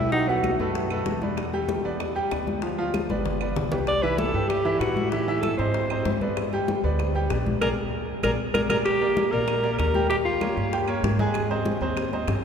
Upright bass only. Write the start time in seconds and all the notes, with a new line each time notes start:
Already playing: B1
0.59 F#2
1.07 E2
1.85 E2
2.32 D2
3.09 G1
3.56 C2
4.34 G2
4.80 A2
5.59 G#2
6.05 G2
6.84 D2
7.30 A#1
7.61 A#1
8.23 A#1
8.54 A#1
8.70 A#1
9.32 A#1
9.79 D#2
10.57 G2
11.03 G#2
11.81 D#2
12.27 G2